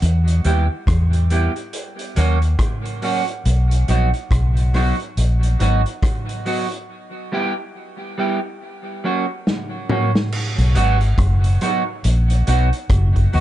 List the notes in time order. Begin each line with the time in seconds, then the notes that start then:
0.02 E2, closed hi-hat
0.28 closed hi-hat
0.44 D#2 G3 B3 E4 G4, closed hi-hat
0.87 E2, kick, cross-stick, closed hi-hat
1.13 closed hi-hat
1.30 G3 B3 E4 G4, closed hi-hat
1.56 closed hi-hat
1.73 closed hi-hat
1.99 closed hi-hat
2.16 D#2 F#3 A#3 C#4 F#4, closed hi-hat
2.42 closed hi-hat
2.59 kick, cross-stick, closed hi-hat
2.85 closed hi-hat
3.02 F#3 A#3 C#4 F#4, open hi-hat
3.28 closed hi-hat
3.45 B1, closed hi-hat
3.71 closed hi-hat
3.88 A#1 F#3 B3 D#4 F#4, closed hi-hat
4.14 closed hi-hat
4.31 B1, kick, cross-stick, closed hi-hat
4.57 closed hi-hat
4.74 F#3 B3 D#4 F#4, cross-stick, open hi-hat
5.00 closed hi-hat
5.17 A#1, closed hi-hat
5.43 closed hi-hat
5.59 G#1 F#3 B3 D#4 F#4, closed hi-hat
5.86 closed hi-hat
6.02 kick, cross-stick, closed hi-hat
6.29 closed hi-hat
6.46 F#3 B3 D#4 F#4, open hi-hat
6.72 closed hi-hat
7.32 G3 B3 E4 G4
8.18 G3 B3 E4 G4
9.04 F#3 A#3 C#4 F#4
9.47 snare
9.89 F#3 A#3 C#4 F#4, mid tom
10.15 snare
10.32 crash
10.58 B1, closed hi-hat
10.75 G#1 F#3 B3 D#4 F#4, closed hi-hat
11.01 closed hi-hat
11.18 F#1, kick, cross-stick, closed hi-hat
11.44 closed hi-hat
11.61 F#3 B3 D#4 F#4, cross-stick, closed hi-hat
12.04 A#1, closed hi-hat
12.30 closed hi-hat
12.47 B1 F#3 B3 D#4 F#4, closed hi-hat
12.73 closed hi-hat
12.90 F#1, kick, cross-stick, closed hi-hat
13.16 kick, closed hi-hat
13.33 D#2 F#3 B3 D#4 F#4, open hi-hat